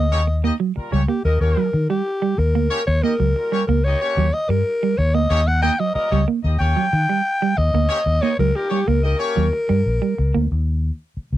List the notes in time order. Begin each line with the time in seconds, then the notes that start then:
Already playing: D2 D#5
0.11 D#2 A#3 C#4 G4 C#5
0.27 muted clean electric guitar stroke
0.43 A#3 D#4 G4 D#5
0.60 F#3
0.76 G3 A#3 F4 A#4, muted clean electric guitar stroke, muted fingered electric bass stroke
0.92 C#2 G3 A#3 C#4 G4 C#5
1.08 A#3 G4
1.24 D#2 A#3 D#4 G4 A#4 D#5
1.40 D#2 A#3 C#4 G4 A#4 C#5
1.57 F#3
1.73 D#3, muted clean electric guitar stroke
1.90 G3 G4
2.22 G3
2.38 D#2 A#4, muted clean electric guitar stroke
2.54 D2 A#3
2.71 A#3 C#4 G4 C#5
2.87 D#2 C#5, muted clean electric guitar stroke
3.03 A#3 D#4 G4 A#4 D#5
3.20 C#2 F#3
3.36 G3 A#3 F4 A#4, muted clean electric guitar stroke
3.52 G3 A#3 C#4 G4 C#5
3.67 C#2 A#3 A#4
3.84 A#3 D#4 G4 C#5 D#5
4.00 A#3 C#4 G4 C#5
4.17 D#2 F#3
4.34 D#5, muted clean electric guitar stroke
4.49 G2 G3 A#4
4.83 G3
4.98 D#2 C#5, muted clean electric guitar stroke
5.14 D2 A#3 D#5
5.30 D#2 A#3 C#4 G4 C#5
5.47 F#5, muted clean electric guitar stroke
5.62 A#3 D#4 G4 D#5 G5
5.80 F#3 D#5
5.94 G3 A#3 F4 A#4 D#5, muted fingered electric bass stroke, muted clean electric guitar stroke
6.10 C#2 G3 A#3 C#4 G4 C#5
6.28 A#3
6.43 D#2 A#3 D#4 G4 D#5
6.59 D#2 A#3 C#4 G4 C#5 G5
6.77 F#3
6.93 D#3, muted clean electric guitar stroke
7.09 G3
7.42 G3
7.57 D#2 D#5, muted clean electric guitar stroke
7.74 D2 A#3
7.89 A#3 C#4 G4 C#5
8.06 D#2, muted clean electric guitar stroke
8.21 A#3 D#4 G4 C#5 D#5
8.39 C#2 F#3 A#4
8.54 G3 A#3 F4 G4 A#4, muted clean electric guitar stroke
8.69 G3 A#3 C#4 G4 C#5
8.88 C#2 A#3 A#4
9.02 A#3 D#4 G4 A#4 D#5
9.19 A#3 C#4 G4 C#5
9.36 D#2 F#3
9.53 muted clean electric guitar stroke
9.69 G2 G3
9.86 A#1
10.02 G3
10.18 C#2, muted clean electric guitar stroke
10.34 D2 A#3
10.52 D#2
11.17 muted fingered electric bass stroke
11.32 C#2